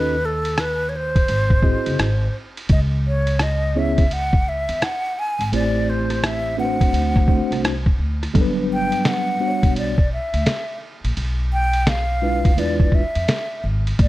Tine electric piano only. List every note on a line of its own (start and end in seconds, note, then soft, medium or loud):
0.00 0.15 C#4 medium
0.00 0.15 D#4 medium
0.00 0.15 F#4 soft
0.00 0.15 A4 medium
0.00 0.15 D#5 medium
1.63 2.08 C4 medium
1.63 2.08 E4 medium
1.63 2.08 F#4 medium
1.63 2.08 G#4 medium
1.63 2.08 D#5 medium
3.75 4.03 B3 medium
3.75 4.03 C#4 medium
3.75 4.04 E4 medium
3.75 4.04 G#4 medium
3.75 4.04 C#5 medium
5.53 6.53 A3 medium
5.53 6.53 C4 medium
5.53 6.53 E4 medium
5.53 6.54 G4 medium
5.53 6.54 C5 medium
6.57 7.27 A3 medium
6.57 7.27 C4 medium
6.57 7.27 D4 medium
6.57 7.28 F#4 medium
6.57 6.67 B4 medium
6.65 7.28 C5 medium
7.28 7.73 A3 medium
7.28 7.73 C4 medium
7.28 7.73 D4 medium
7.28 7.73 F#4 medium
7.28 7.73 C5 medium
8.34 9.35 F#3 medium
8.34 9.35 G3 medium
8.34 9.35 B3 medium
8.34 9.35 D4 medium
8.34 8.43 A4 medium
8.41 9.39 B4 medium
9.40 9.94 G3 medium
9.40 9.93 B3 medium
9.40 9.94 D4 medium
9.40 9.94 F#4 medium
9.40 9.49 C5 medium
9.48 9.97 C#5 medium
12.22 12.50 G#3 medium
12.22 12.50 D4 medium
12.22 12.50 E4 medium
12.22 12.50 F4 medium
12.22 12.51 B4 medium
12.57 13.02 G#3 medium
12.57 13.02 D4 medium
12.57 13.02 E4 medium
12.57 13.02 F4 medium
12.57 13.02 B4 medium